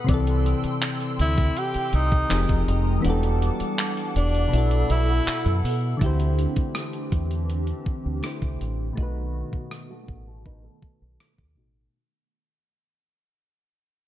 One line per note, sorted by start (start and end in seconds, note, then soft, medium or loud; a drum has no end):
0.00 2.26 A4 medium
0.04 2.25 C3 medium
0.04 2.26 C4 medium
0.09 0.53 C2 loud
0.09 2.28 E3 medium
0.09 2.27 D5 medium
0.09 3.02 G5 medium
0.09 2.29 C6 medium
0.09 2.29 E6 medium
0.09 kick loud
0.09 closed hi-hat medium
0.14 2.29 A4 medium
0.27 closed hi-hat medium
0.46 closed hi-hat medium
0.64 muted fingered electric bass stroke medium
0.64 closed hi-hat medium
0.82 clap loud
0.82 closed hi-hat medium
1.01 closed hi-hat soft
1.19 1.49 D2 loud
1.19 1.59 E4 loud
1.19 closed hi-hat medium
1.38 kick medium
1.38 closed hi-hat soft
1.57 1.94 G4 loud
1.57 closed hi-hat medium
1.74 muted fingered electric bass stroke soft
1.74 closed hi-hat medium
1.93 2.23 C2 loud
1.93 2.64 D#4 loud
1.93 closed hi-hat medium
2.12 kick medium
2.29 2.45 F1 loud
2.29 3.04 F3 medium
2.29 3.04 G#3 medium
2.29 3.05 C4 medium
2.29 3.05 D#4 medium
2.29 3.05 G4 medium
2.29 3.06 G#4 medium
2.29 3.04 A#5 medium
2.29 3.04 D#6 medium
2.29 clap loud
2.29 closed hi-hat medium
2.34 3.06 A#4 medium
2.49 2.64 F1 medium
2.49 kick medium
2.49 closed hi-hat soft
2.68 2.97 F1 medium
2.68 closed hi-hat medium
3.01 4.48 E3 medium
3.01 4.51 G3 medium
3.01 4.49 B3 medium
3.01 4.50 D4 medium
3.01 4.51 A5 medium
3.05 3.49 E1 loud
3.05 4.51 F#4 medium
3.05 4.52 G4 medium
3.05 4.51 F#5 medium
3.05 4.51 D6 medium
3.05 closed hi-hat medium
3.10 4.52 A4 medium
3.23 closed hi-hat medium
3.42 closed hi-hat medium
3.60 muted fingered electric bass stroke soft
3.60 closed hi-hat medium
3.79 clap loud
3.79 closed hi-hat medium
3.97 closed hi-hat soft
4.16 4.46 E1 medium
4.16 4.93 D4 loud
4.16 closed hi-hat medium
4.35 closed hi-hat soft
4.48 5.96 B2 medium
4.48 5.97 B3 medium
4.53 4.83 B1 loud
4.53 5.98 E4 medium
4.53 5.99 F#4 medium
4.53 6.00 A4 medium
4.53 6.00 F#5 medium
4.53 6.00 B5 medium
4.53 5.99 E6 medium
4.53 closed hi-hat medium
4.58 6.01 A4 medium
4.71 closed hi-hat soft
4.90 5.20 B1 loud
4.90 5.65 E4 loud
4.90 closed hi-hat medium
5.27 muted fingered electric bass stroke soft
5.27 clap loud
5.27 closed hi-hat medium
5.46 5.60 F#2 medium
5.46 closed hi-hat soft
5.64 5.94 B2 loud
5.64 open hi-hat medium
5.97 8.17 D3 medium
5.97 8.94 E3 medium
5.97 8.18 A3 medium
5.97 8.94 C4 medium
5.97 8.94 D4 medium
5.97 8.94 G4 medium
5.97 closed hi-hat medium
6.01 6.46 D2 loud
6.01 8.20 E4 medium
6.01 8.21 G4 medium
6.01 kick loud
6.06 8.22 C5 medium
6.20 closed hi-hat soft
6.39 closed hi-hat medium
6.56 muted fingered electric bass stroke soft
6.56 kick medium
6.56 closed hi-hat medium
6.75 cross-stick loud
6.75 closed hi-hat medium
6.93 closed hi-hat soft
7.12 7.71 E2 medium
7.12 kick medium
7.12 closed hi-hat medium
7.31 closed hi-hat soft
7.50 closed hi-hat medium
7.67 closed hi-hat soft
7.86 muted fingered electric bass stroke soft
7.86 kick medium
8.06 8.20 D2 medium
8.22 8.96 D3 medium
8.22 8.94 A3 medium
8.22 8.98 E4 medium
8.22 8.98 G4 medium
8.22 cross-stick loud
8.22 closed hi-hat medium
8.26 8.99 C5 medium
8.42 8.57 C2 medium
8.42 kick medium
8.42 closed hi-hat soft
8.61 8.90 A1 medium
8.61 closed hi-hat medium
8.93 11.51 B2 medium
8.93 11.91 D#3 medium
8.93 11.52 A3 medium
8.93 11.91 A3 medium
8.93 11.91 B3 medium
8.93 11.90 F#4 medium
8.97 9.42 B1 loud
8.97 11.53 D#4 medium
8.97 11.54 F#4 medium
8.97 kick loud
9.03 11.55 B4 medium
9.53 muted fingered electric bass stroke soft
9.53 kick medium
9.71 cross-stick loud
9.90 10.26 A3 medium
9.90 10.25 F#4 medium
10.08 10.68 A1 medium
10.08 kick medium
10.27 10.45 A4 medium
10.46 10.64 D#4 medium
10.46 10.63 B4 medium
10.46 kick medium
10.64 11.71 A4 medium
10.82 muted fingered electric bass stroke soft
10.82 kick medium
11.02 11.16 B1 medium
11.20 cross-stick loud
11.38 11.57 D#2 medium
11.38 kick medium
11.55 11.86 A1 medium
11.55 11.93 B2 medium
11.55 11.93 A3 medium
11.55 11.94 D#4 medium
11.55 11.95 F#4 medium
11.60 11.95 A4 medium